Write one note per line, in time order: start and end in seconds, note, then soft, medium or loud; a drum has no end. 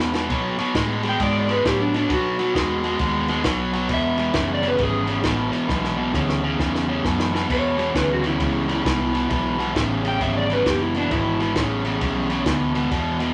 0.00 0.11 E2 medium
0.00 0.28 E2 medium
0.00 0.11 B2 medium
0.00 snare medium
0.13 0.28 E2 medium
0.13 0.29 B2 medium
0.13 snare medium
0.29 0.56 B2 medium
0.29 0.56 F#3 medium
0.29 kick medium
0.29 snare soft
0.29 ride medium
0.58 0.74 B2 medium
0.58 0.74 F#3 medium
0.58 muted fingered electric bass stroke soft
0.58 snare soft
0.58 ride medium
0.75 1.19 A2 medium
0.75 1.01 B2 medium
0.75 1.01 G#3 medium
0.75 kick medium
0.75 snare loud
0.75 ride medium
1.03 1.18 B2 medium
1.03 1.18 G#3 medium
1.03 snare soft
1.03 ride medium
1.09 1.22 G5 medium
1.20 1.64 G#2 medium
1.20 1.46 B2 medium
1.20 1.46 G#3 medium
1.20 1.36 D5 medium
1.20 kick medium
1.20 snare soft
1.20 ride medium
1.39 1.52 D5 medium
1.49 1.63 B2 medium
1.49 1.64 G#3 medium
1.49 1.65 B4 medium
1.49 snare soft
1.49 ride medium
1.65 2.09 A2 medium
1.65 1.91 B2 medium
1.65 1.91 F#3 medium
1.65 1.80 G4 medium
1.65 kick medium
1.65 snare loud
1.65 ride medium
1.81 1.95 D4 medium
1.94 2.09 B2 medium
1.94 2.09 F#3 medium
1.94 2.11 D4 medium
1.94 snare soft
1.94 ride medium
2.10 2.36 B2 medium
2.10 2.54 B2 medium
2.10 2.36 F#3 medium
2.10 2.99 F#4 loud
2.10 kick medium
2.10 snare soft
2.10 ride medium
2.39 2.53 B2 medium
2.39 2.54 F#3 medium
2.39 snare soft
2.39 ride medium
2.55 2.99 E2 medium
2.55 2.81 B2 medium
2.55 2.81 G#3 medium
2.55 kick medium
2.55 snare loud
2.55 ride medium
2.83 2.98 B2 medium
2.83 2.98 G#3 medium
2.83 snare soft
2.83 ride medium
2.99 3.44 D#2 medium
2.99 3.25 B2 medium
2.99 3.26 G#3 medium
2.99 kick medium
2.99 snare soft
2.99 ride medium
3.28 3.43 B2 medium
3.28 3.44 G#3 medium
3.28 snare soft
3.28 ride medium
3.44 3.88 B1 loud
3.44 3.70 B2 medium
3.44 3.71 F#3 medium
3.44 kick medium
3.44 snare loud
3.44 ride medium
3.73 3.88 B2 medium
3.73 3.88 F#3 medium
3.73 snare soft
3.73 ride medium
3.89 4.33 E1 medium
3.89 4.15 E2 medium
3.89 4.16 B2 medium
3.89 kick medium
3.89 snare soft
3.89 ride medium
3.94 4.50 E5 loud
4.18 4.32 E2 medium
4.18 4.33 B2 medium
4.18 snare soft
4.18 ride medium
4.34 4.78 F#1 medium
4.34 4.60 E2 medium
4.34 4.60 C#3 medium
4.34 kick medium
4.34 snare loud
4.34 ride medium
4.54 4.67 D5 medium
4.62 4.77 E2 medium
4.62 4.77 C#3 medium
4.62 snare soft
4.62 ride medium
4.68 4.81 B4 medium
4.78 5.23 G#1 medium
4.78 5.05 E2 medium
4.78 5.05 C#3 medium
4.78 kick medium
4.78 snare soft
4.78 ride medium
4.83 5.25 G#4 loud
5.06 5.22 E2 medium
5.06 5.22 C#3 medium
5.06 snare soft
5.06 ride medium
5.23 5.51 A1 loud
5.23 5.50 E2 medium
5.23 5.50 B2 loud
5.23 kick medium
5.23 snare loud
5.23 ride medium
5.52 5.67 E2 medium
5.52 5.68 B2 medium
5.52 snare soft
5.52 ride medium
5.68 6.13 B1 medium
5.68 5.95 E2 medium
5.68 5.95 B2 medium
5.68 kick medium
5.68 snare medium
5.84 snare medium
5.97 6.12 E2 medium
5.97 6.13 B2 medium
6.13 6.58 D2 medium
6.13 6.40 E2 medium
6.13 6.41 C#3 medium
6.13 kick medium
6.13 snare medium
6.29 snare medium
6.43 6.58 E2 medium
6.43 6.58 C#3 medium
6.59 7.04 E2 medium
6.59 6.86 E2 medium
6.59 6.86 C#3 medium
6.59 kick medium
6.59 snare medium
6.75 snare medium
6.88 7.03 E2 medium
6.88 7.04 C#3 medium
7.04 7.31 E2 medium
7.04 7.49 F#2 loud
7.04 7.31 B2 medium
7.04 kick medium
7.04 snare medium
7.20 snare loud
7.33 7.47 E2 medium
7.33 7.47 B2 medium
7.33 snare medium
7.48 7.75 E2 medium
7.48 7.94 E2 medium
7.48 7.76 B2 medium
7.48 7.95 C#5 medium
7.48 kick medium
7.48 snare soft
7.48 crash loud
7.77 7.93 E2 medium
7.77 7.93 B2 medium
7.77 snare soft
7.77 ride medium
7.94 8.39 D2 medium
7.94 8.21 E2 medium
7.94 8.21 C#3 medium
7.94 8.11 B4 medium
7.94 kick medium
7.94 snare loud
7.94 ride medium
8.13 8.27 F#4 medium
8.22 8.38 E2 medium
8.22 8.38 C#3 medium
8.22 snare soft
8.22 ride medium
8.27 9.58 E4 medium
8.40 8.84 C#2 medium
8.40 8.66 E2 medium
8.40 8.66 C#3 loud
8.40 kick medium
8.40 snare soft
8.40 ride medium
8.68 8.83 E2 medium
8.68 8.84 C#3 medium
8.68 snare soft
8.68 ride medium
8.85 9.29 C2 medium
8.85 9.11 E2 medium
8.85 9.12 B2 medium
8.85 kick medium
8.85 snare loud
8.85 ride medium
9.13 9.28 E2 medium
9.13 9.29 B2 medium
9.13 snare soft
9.13 ride medium
9.29 9.74 B1 medium
9.29 9.56 E2 medium
9.29 9.56 B2 medium
9.29 kick medium
9.29 snare soft
9.29 ride medium
9.58 9.74 E2 medium
9.58 9.74 B2 medium
9.58 snare soft
9.58 ride medium
9.75 10.20 A1 medium
9.75 10.01 E2 medium
9.75 10.02 C#3 medium
9.75 kick medium
9.75 snare loud
9.75 ride medium
10.03 10.19 E2 medium
10.03 10.19 C#3 medium
10.03 snare soft
10.03 ride medium
10.08 10.22 G5 medium
10.20 10.65 G#1 medium
10.20 10.46 E2 medium
10.20 10.47 C#3 loud
10.20 10.36 E5 medium
10.20 kick medium
10.20 snare soft
10.20 ride medium
10.37 10.51 D5 medium
10.50 10.64 E2 medium
10.50 10.65 C#3 medium
10.50 10.67 B4 medium
10.50 snare soft
10.50 ride medium
10.65 11.10 F#1 medium
10.65 10.91 E2 medium
10.65 10.92 B2 medium
10.65 10.82 G4 medium
10.65 kick medium
10.65 snare loud
10.65 ride medium
10.82 10.96 E4 medium
10.94 11.09 E2 medium
10.94 11.10 B2 medium
10.94 11.12 D4 medium
10.94 snare soft
10.94 ride medium
11.11 11.55 G#1 medium
11.11 11.37 E2 medium
11.11 11.37 B2 medium
11.11 11.55 E4 loud
11.11 kick medium
11.11 snare soft
11.11 ride medium
11.39 11.54 E2 medium
11.39 11.55 B2 medium
11.39 snare soft
11.39 ride medium
11.55 12.00 A1 medium
11.55 11.82 E2 medium
11.55 11.82 C#3 medium
11.55 kick medium
11.55 snare loud
11.55 ride medium
11.85 12.00 E2 medium
11.85 12.00 C#3 medium
11.85 snare soft
11.85 ride medium
12.01 12.45 B1 medium
12.01 12.27 E2 medium
12.01 12.27 C#3 medium
12.01 kick medium
12.01 snare soft
12.01 ride medium
12.29 12.44 E2 medium
12.29 12.45 C#3 medium
12.29 snare soft
12.29 ride medium
12.46 12.90 D2 medium
12.46 12.72 E2 medium
12.46 12.72 B2 medium
12.46 kick medium
12.46 snare loud
12.46 ride medium
12.74 12.89 E2 medium
12.74 12.90 B2 medium
12.74 snare soft
12.74 ride medium
12.91 13.17 E2 medium
12.91 13.34 E2 medium
12.91 13.17 B2 medium
12.91 kick medium
12.91 snare soft
12.91 ride medium
13.19 13.34 E2 medium
13.19 13.34 B2 medium
13.19 snare soft
13.19 ride medium